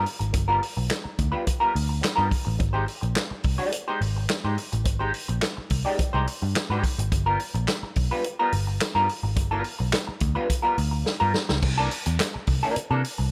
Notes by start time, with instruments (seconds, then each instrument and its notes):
0.06 open hi-hat
0.19 picked electric bass G#1, muted hollow-body jazz guitar stroke, closed hi-hat
0.33 picked electric bass G1, muted hollow-body jazz guitar stroke, kick, closed hi-hat
0.48 hollow-body jazz guitar G3 B3 F4 A#4
0.61 muted hollow-body jazz guitar stroke, open hi-hat
0.77 picked electric bass B1, muted hollow-body jazz guitar stroke
0.90 muted hollow-body jazz guitar stroke, snare, clap, closed hi-hat
1.04 muted hollow-body jazz guitar stroke, muted picked electric bass stroke
1.19 picked electric bass D2, kick, closed hi-hat
1.32 hollow-body jazz guitar G3 B3 F4 B4
1.46 muted hollow-body jazz guitar stroke, kick, closed hi-hat
1.60 hollow-body jazz guitar G3 B3 F4 A#4
1.74 picked electric bass D2, muted hollow-body jazz guitar stroke, open hi-hat
1.89 muted hollow-body jazz guitar stroke
2.01 muted hollow-body jazz guitar stroke, snare, clap, closed hi-hat
2.16 picked electric bass G2, hollow-body jazz guitar G3 B3 F4 A#4
2.29 muted hollow-body jazz guitar stroke, kick, open hi-hat
2.45 picked electric bass A1, muted hollow-body jazz guitar stroke
2.59 picked electric bass G#1, muted hollow-body jazz guitar stroke, kick, closed hi-hat
2.73 hollow-body jazz guitar G#3 D#4 G4 C5
2.86 muted hollow-body jazz guitar stroke, open hi-hat
3.01 picked electric bass A#1, muted hollow-body jazz guitar stroke, closed hi-hat
3.16 muted hollow-body jazz guitar stroke, snare, clap, closed hi-hat
3.31 muted hollow-body jazz guitar stroke, muted picked electric bass stroke
3.43 picked electric bass C2, kick, open hi-hat
3.58 hollow-body jazz guitar G#3 D#4 G4 D5
3.72 muted hollow-body jazz guitar stroke, closed hi-hat
3.88 hollow-body jazz guitar G#3 D#4 G4 C5
4.01 picked electric bass G#1, muted hollow-body jazz guitar stroke, open hi-hat
4.16 muted hollow-body jazz guitar stroke
4.29 muted hollow-body jazz guitar stroke, snare, clap, closed hi-hat
4.44 picked electric bass G#2, hollow-body jazz guitar G#3 D#4 G4 C5
4.57 muted hollow-body jazz guitar stroke, open hi-hat
4.72 picked electric bass A1, muted hollow-body jazz guitar stroke, closed hi-hat
4.84 picked electric bass G#1, muted hollow-body jazz guitar stroke, kick, closed hi-hat
4.99 hollow-body jazz guitar G#3 D#4 G4 C5
5.13 muted hollow-body jazz guitar stroke, open hi-hat
5.28 picked electric bass A#1, muted hollow-body jazz guitar stroke, closed hi-hat
5.42 muted hollow-body jazz guitar stroke, snare, clap, closed hi-hat
5.57 muted hollow-body jazz guitar stroke, muted picked electric bass stroke
5.70 picked electric bass C2, kick, open hi-hat
5.85 hollow-body jazz guitar G#3 D#4 G4 D5
5.99 muted hollow-body jazz guitar stroke, muted picked electric bass stroke, kick, closed hi-hat
6.13 picked electric bass C2, hollow-body jazz guitar G#3 D#4 G4 C5
6.27 muted hollow-body jazz guitar stroke, open hi-hat
6.42 picked electric bass G2, muted hollow-body jazz guitar stroke
6.56 muted hollow-body jazz guitar stroke, snare, clap, closed hi-hat
6.70 picked electric bass G#2, hollow-body jazz guitar G#3 D#4 G4 C5
6.84 muted hollow-body jazz guitar stroke, kick, open hi-hat
6.98 picked electric bass G#1, muted hollow-body jazz guitar stroke, closed hi-hat
7.12 picked electric bass G1, muted hollow-body jazz guitar stroke, kick, closed hi-hat
7.26 hollow-body jazz guitar G3 B3 F4 A#4
7.40 open hi-hat
7.54 picked electric bass A#1, muted hollow-body jazz guitar stroke, closed hi-hat
7.68 muted hollow-body jazz guitar stroke, snare, clap, closed hi-hat
7.83 muted picked electric bass stroke, muted hollow-body jazz guitar stroke
7.96 picked electric bass B1, kick, open hi-hat
8.11 hollow-body jazz guitar G3 B3 F4 B4
8.24 muted hollow-body jazz guitar stroke, closed hi-hat
8.39 hollow-body jazz guitar G3 B3 F4 A#4
8.52 picked electric bass G1, muted hollow-body jazz guitar stroke, open hi-hat
8.67 muted hollow-body jazz guitar stroke
8.80 muted hollow-body jazz guitar stroke, snare, clap, closed hi-hat
8.95 picked electric bass G2, hollow-body jazz guitar G3 B3 F4 A#4
9.09 open hi-hat
9.23 picked electric bass G#1, muted hollow-body jazz guitar stroke
9.36 picked electric bass G1, muted hollow-body jazz guitar stroke, kick, closed hi-hat
9.51 hollow-body jazz guitar G3 B3 F4 A#4
9.64 muted hollow-body jazz guitar stroke, open hi-hat
9.79 picked electric bass B1, muted hollow-body jazz guitar stroke
9.93 muted hollow-body jazz guitar stroke, snare, clap, closed hi-hat
10.07 muted hollow-body jazz guitar stroke, muted picked electric bass stroke
10.20 picked electric bass D2, kick, closed hi-hat
10.35 hollow-body jazz guitar G3 B3 F4 B4
10.48 muted hollow-body jazz guitar stroke, kick, closed hi-hat
10.62 hollow-body jazz guitar G3 B3 F4 A#4
10.77 picked electric bass D2, muted hollow-body jazz guitar stroke, open hi-hat
10.91 muted hollow-body jazz guitar stroke
11.05 muted hollow-body jazz guitar stroke, snare
11.20 picked electric bass G2, hollow-body jazz guitar G3 B3 F4 A#4
11.34 snare
11.49 picked electric bass C#2, muted hollow-body jazz guitar stroke, snare
11.62 picked electric bass C2, muted hollow-body jazz guitar stroke, kick, crash
11.78 hollow-body jazz guitar E3 A#3 D4 A4
11.91 muted hollow-body jazz guitar stroke, open hi-hat
12.06 picked electric bass E2, muted hollow-body jazz guitar stroke, closed hi-hat
12.19 muted hollow-body jazz guitar stroke, snare, clap, closed hi-hat
12.34 muted hollow-body jazz guitar stroke, muted picked electric bass stroke
12.47 picked electric bass C2, kick, open hi-hat
12.63 hollow-body jazz guitar E3 A#3 D4 A#4
12.76 muted hollow-body jazz guitar stroke, muted picked electric bass stroke, closed hi-hat
12.91 picked electric bass C3, hollow-body jazz guitar E3 A#3 D4 A4
13.03 muted hollow-body jazz guitar stroke, open hi-hat
13.18 picked electric bass C2, muted hollow-body jazz guitar stroke